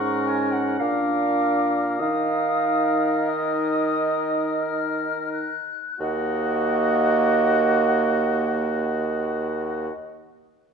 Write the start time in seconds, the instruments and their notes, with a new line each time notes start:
Already playing: bassoon G#2, french horn C#4, oboe A#4, clarinet F#5, flute C#6
0.28 clarinet G#5
0.52 clarinet F#5
0.79 bassoon A#2, french horn D4, oboe A#4, clarinet F5, flute D6
1.99 bassoon D#3, french horn D#4, oboe A#4, clarinet F5, flute D#6
3.27 clarinet D#5, flute D#6
4.62 flute F6
5.33 flute F#6
6.00 bassoon D#2, french horn A#3, oboe F#4, clarinet D#5, flute F#5